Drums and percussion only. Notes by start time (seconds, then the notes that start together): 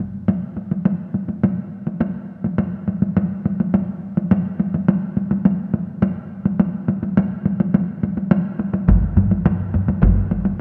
0.00 taiko high
0.28 taiko high
0.57 taiko high
0.71 taiko high
0.85 taiko high
1.14 taiko high
1.29 taiko high
1.44 taiko high
1.87 taiko high
2.01 taiko high
2.44 taiko high
2.58 taiko high
2.88 taiko high
3.02 taiko high
3.17 taiko high
3.46 taiko high
3.60 taiko high
3.74 taiko high
4.17 taiko high
4.31 taiko high
4.60 taiko high
4.74 taiko high
4.88 taiko high
5.17 taiko high
5.31 taiko high
5.45 taiko high
5.74 taiko high
6.02 taiko high
6.46 taiko high
6.60 taiko high
6.88 taiko high
7.03 taiko high
7.17 taiko high
7.46 taiko high
7.60 taiko high
7.74 taiko high
8.03 taiko high
8.17 taiko high
8.31 taiko high
8.60 taiko high
8.74 taiko high
8.88 taiko, taiko low-mid, taiko high
9.02 taiko low-mid
9.16 taiko low-mid, taiko high
9.31 taiko high
9.45 taiko low-mid, taiko high
9.74 taiko low-mid, taiko high
9.88 taiko low-mid, taiko high
10.02 taiko, taiko low-mid, taiko high
10.31 taiko high
10.45 taiko high